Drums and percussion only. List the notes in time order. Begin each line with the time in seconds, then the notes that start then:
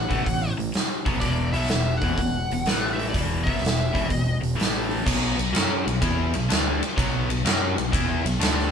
0.11 kick, open hi-hat
0.26 kick, open hi-hat
0.60 open hi-hat
0.74 snare, open hi-hat
1.06 kick, open hi-hat
1.21 kick, open hi-hat
1.53 open hi-hat
1.64 snare
1.68 snare, open hi-hat
2.01 kick, open hi-hat
2.18 kick, open hi-hat
2.51 open hi-hat
2.66 snare, open hi-hat
2.99 open hi-hat
3.14 kick, open hi-hat
3.47 kick, open hi-hat
3.58 snare
3.65 snare, open hi-hat
3.95 kick, open hi-hat
4.10 kick, open hi-hat
4.43 open hi-hat
4.59 snare, open hi-hat
4.91 open hi-hat
5.07 kick, crash
5.39 ride
5.55 snare, ride
5.88 ride
6.02 kick, ride
6.34 ride
6.50 snare, ride
6.83 ride
6.98 kick, ride
7.30 ride
7.46 snare, ride
7.78 ride
7.93 kick, ride
8.26 ride
8.41 snare, ride
8.59 snare